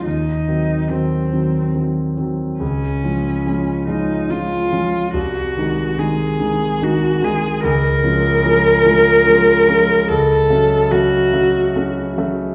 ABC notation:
X:1
M:3/4
L:1/8
Q:1/4=72
K:Db
V:1 name="Cello"
E2 C2 z2 | D3 E F2 | G2 A2 G A | B6 |
=A2 G3 z |]
V:2 name="Grand piano" clef=bass
E,, [E,G,C] [E,G,C] [E,G,C] [E,G,C] [E,G,C] | D,, [F,A,D] [F,A,D] [F,A,D] [F,A,D] [F,A,D] | C,, [E,A,E] [E,A,E] [E,A,E] [E,A,E] [E,A,E] | D,, [F,A,D] [F,A,D] [F,A,D] [F,A,D] [F,A,D] |
D,, [G,=A,D] [G,A,D] [G,A,D] [G,A,D] [G,A,D] |]